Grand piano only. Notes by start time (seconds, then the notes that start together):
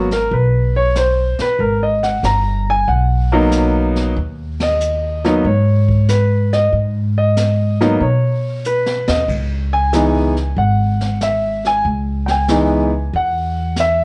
0.13 A#4
0.33 B4
0.76 C#5
0.97 C5
1.42 B4
1.60 A#4
1.83 D#5
2.03 F#5
2.25 A#5
2.70 G#5
2.88 F#5
3.32 F#3 A#3 B3 D#4
4.63 D#5
5.24 F#3 A#3 B3 D#4
5.46 C#5
6.09 B4
6.53 D#5
7.18 D#5
7.81 F#3 A#3 B3 D#4
8.01 C#5
8.66 B4
9.08 D#5
9.73 G#5
9.93 E3 G#3 B3 D#4
10.58 F#5
11.23 E5
11.67 G#5
12.26 G5
12.31 G#5
12.49 E3 G#3 B3 D#4
13.16 F#5
13.80 E5